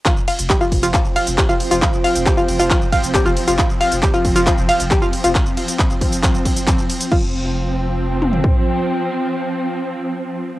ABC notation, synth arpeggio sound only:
X:1
M:4/4
L:1/16
Q:1/4=136
K:Cphr
V:1 name="Synth arpeggio sound"
F z f z G F z F F z f z G F z F | F z f z G F z F F z f z G F z F | F z f z G F z F F z f z G F z F | z16 |
F2 z12 z2 | z16 |]